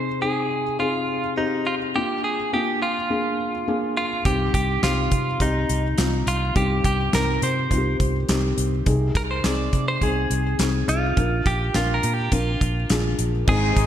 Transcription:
Already playing: C3 C4 D#4 G#4 C5
0.22 C4 D#4 G#4
0.79 C4 D#4 F4 G#4
1.37 C4 D#4 G4
1.67 F4
1.95 A#3 D4 F4 G4
2.24 G#4
2.53 A#3 D4 F4 G4
2.82 F4
3.10 A#3 D4 G#4
3.68 A#3 D4 G#4
3.97 F4
4.25 C2 G2 C4 D#4 G4, kick, closed hi-hat
4.54 C2 G4, kick, closed hi-hat
4.83 C2 C4 D#4 F4 G4, snare, clap, closed hi-hat
5.12 C3, kick, closed hi-hat
5.40 C2 C4 D#4 G4, kick, closed hi-hat
5.69 C2, closed hi-hat
5.98 C2 C4 D#4 F4, snare, clap, closed hi-hat
6.27 C2 F4, closed hi-hat
6.56 C2 G2 C4 D#4 G4, kick, closed hi-hat
6.84 C2 G4, kick, closed hi-hat
7.13 C2 C4 D#4 A#4, snare, clap, closed hi-hat
7.42 C3 C5, closed hi-hat
7.71 C2 C4 D#4 F4, kick, closed hi-hat
7.78 G4
8.00 C2, kick, closed hi-hat
8.29 C2 C4 D#4 G4, snare, clap, closed hi-hat
8.58 C2, closed hi-hat
8.86 C2 C3 C4 D#4 G#4, kick, closed hi-hat
9.15 C2 A#4, kick, snare, closed hi-hat
9.31 C5
9.44 C2 C4 D#4 G#4 D5, snare, clap, closed hi-hat
9.73 C3, kick, closed hi-hat
9.88 C5
10.01 C2 C4 D#4 G#4, kick, closed hi-hat
10.30 C2, closed hi-hat
10.59 C2 C4 D#4 G#4, snare, clap, closed hi-hat
10.88 C2 F4, closed hi-hat
11.17 A#1 D4 F4 A#4, kick, closed hi-hat
11.46 A#1 G4, kick, closed hi-hat
11.74 A#1 D4 F4 A#4, snare, clap, closed hi-hat
11.94 A#4
12.03 A#2, closed hi-hat
12.14 G4
12.32 A#1 D4 F4 A#4, kick, closed hi-hat
12.61 A#1, kick, closed hi-hat
12.90 A#1 D4 F4 G#4, snare, clap, closed hi-hat
13.19 A#1, closed hi-hat
13.47 G#1 G#2 C3 D#3 G#3 C4 D#4 G#4, kick, crash
13.76 G#1, kick, closed hi-hat

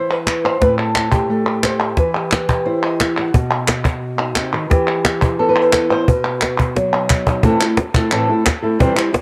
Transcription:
Already playing: E3 E4 C5 E5
0.09 B4, cajon slap
0.27 cajon slap, clap
0.44 C5
0.60 A2 A3 C4 E4 B4, cajon bass, cajon slap
0.78 A4
0.95 cajon slap, clap
1.12 G4, cajon bass
1.29 A3 A4
1.47 G4
1.63 C5, cajon slap, clap
1.81 cajon slap
1.97 E3 B4, cajon bass, cajon slap
2.15 G4
2.31 cajon slap, clap
2.49 G4, cajon bass, clap
2.65 E4 C5
2.84 D#5
3.00 E5, cajon slap, clap
3.18 F#5, cajon slap
3.34 B2, cajon bass
3.53 F#4
3.68 F#4, cajon slap, clap
3.85 F#4, cajon bass, clap
4.20 D#4
4.36 C3, cajon slap, clap
4.53 D#3, cajon slap, clap
4.70 E3 G4, cajon bass, cajon slap
5.05 cajon slap, clap
5.22 E4, cajon bass
5.39 B3 A4
5.49 B4
5.62 C5
5.73 B4, cajon slap, clap
5.91 C5, cajon slap
6.08 B2 B4, cajon bass
6.25 F#4
6.41 F#4, cajon slap, clap
6.59 F#4, cajon bass
6.76 F#3, cajon slap
6.93 D#4
7.09 cajon bass, clap
7.27 D#4, cajon bass, clap
7.43 A2 E3 A3 C4 E4 A4, cajon bass
7.61 A3 C4 E4 A4, clap
7.77 muted nylon-string guitar stroke, cajon slap
7.94 A3 C4 E4 A4, cajon bass, clap
8.11 A2 E3 A3 C4 E4 A4, clap
8.29 A3 C4 E4 A4
8.46 muted nylon-string guitar stroke, cajon bass, cajon slap, clap
8.62 A3 C4 E4 A4, cajon slap
8.79 C3 E3 G3 C4 E4 C5, cajon bass
8.95 G3 C4 E4 C5, clap
9.13 muted nylon-string guitar stroke, cajon slap

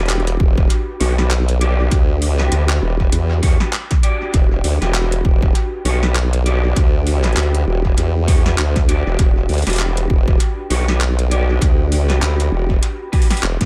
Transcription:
Already playing: E1 D4 F#4 G4 B4
0.06 clap, closed hi-hat
0.10 closed hi-hat
0.15 closed hi-hat
0.20 closed hi-hat
0.27 closed hi-hat
0.40 E1, kick
0.58 kick
0.70 closed hi-hat
1.00 B1 D4 F#4 G4 C#5, open hi-hat
1.18 D4 F#4 G4 B4, snare
1.31 clap, closed hi-hat
1.48 closed hi-hat
1.61 D4 F#4 G4 D5, closed hi-hat
1.91 D2, kick, closed hi-hat
2.22 open hi-hat
2.33 C#2
2.39 D4 F#4 G4 B4, clap, snare
2.52 D2, closed hi-hat
2.69 clap, closed hi-hat
2.82 E1
3.00 kick
3.12 E2, closed hi-hat
3.42 E2 D4 F#4 G4 C#5, kick, open hi-hat
3.60 D4 F#4 G4 B4, snare
3.73 clap, closed hi-hat
3.91 kick, snare, closed hi-hat
4.03 D4 F#4 G4 D5, closed hi-hat
4.34 E1, kick, closed hi-hat
4.64 D2, open hi-hat
4.81 E1 D4 F#4 G4 B4, snare, closed hi-hat
4.95 clap, closed hi-hat
5.12 closed hi-hat
5.25 E1, kick
5.42 kick
5.55 closed hi-hat
5.85 B1 D4 F#4 G4 C#5, open hi-hat
6.03 D4 F#4 G4 B4, snare
6.16 clap, closed hi-hat
6.33 closed hi-hat
6.46 D4 F#4 G4 D5, closed hi-hat
6.76 D2, kick, closed hi-hat
7.07 open hi-hat
7.24 D4 F#4 G4 B4, clap, snare, closed hi-hat
7.33 closed hi-hat
7.37 D2, clap, closed hi-hat
7.55 closed hi-hat
7.67 E1
7.85 kick
7.97 E2, closed hi-hat
8.27 D4 F#4 G4 C#5, kick, open hi-hat
8.45 D4 F#4 G4 B4, snare
8.58 D2, clap, closed hi-hat
8.76 kick, snare, closed hi-hat
8.88 D4 F#4 G4 D5, closed hi-hat
9.06 E1
9.19 E1, kick, closed hi-hat
9.49 D2, open hi-hat
9.54 open hi-hat
9.58 open hi-hat
9.62 open hi-hat
9.66 E1 D4 F#4 G4 B4, snare, closed hi-hat, open hi-hat
9.70 open hi-hat
9.73 open hi-hat
9.76 clap, closed hi-hat, open hi-hat
9.97 closed hi-hat
10.10 E1, kick
10.28 kick
10.40 closed hi-hat
10.70 B1 D4 F#4 G4 C#5, open hi-hat
10.88 D4 F#4 G4 B4, snare
11.01 clap, closed hi-hat
11.19 closed hi-hat
11.31 D4 F#4 G4 D5, closed hi-hat
11.61 D2, kick, closed hi-hat
11.92 open hi-hat
12.02 C#2
12.09 D4 F#4 G4 B4, clap, snare, closed hi-hat
12.22 D2, clap, closed hi-hat
12.40 closed hi-hat
12.52 E1
12.70 kick
12.83 closed hi-hat
13.12 D4 F#4 G4 B4, kick, open hi-hat
13.22 open hi-hat
13.30 D4 F#4 G4 B4, snare, closed hi-hat, open hi-hat
13.37 open hi-hat
13.43 E1, clap, closed hi-hat
13.61 E2, kick, snare, closed hi-hat

